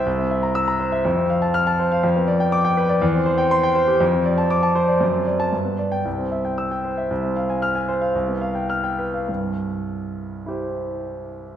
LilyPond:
\new Staff \with { instrumentName = "Grand piano" } { \time 2/4 \key c \major \tempo 4 = 116 << { r4 e'''8 r8 | r4 f'''8 r8 | r4 d'''8 r8 | r4 c'''8 r8 |
r4 d'''8 r8 | r8. a''16 r8. g''16 | r4 e'''8 r8 | r4 f'''8 r8 |
r4 f'''8 r8 | r2 | <e' g' c''>2 | } \\ { c,16 c'16 e''16 bes''8 bes''16 c''16 e''16 | f,16 c'16 f''16 a''8 a''16 c''16 f''16 | f,16 b16 d''16 g''8 g''16 b'16 d''16 | e,16 c'16 c''16 g''8 g''16 c''16 g'16 |
f,16 c'16 d''16 a''8 a''16 c''16 d''16 | fis,16 c'16 d''8 g,16 b16 d''8 | c,16 c'16 e''16 g''8 g''16 c''16 e''16 | c,16 c'16 f''16 aes''8 aes''16 c''16 f''16 |
c,16 b16 f''16 g''8 g''16 b'16 f''16 | <c, g,>2~ | <c, g,>2 | } >> }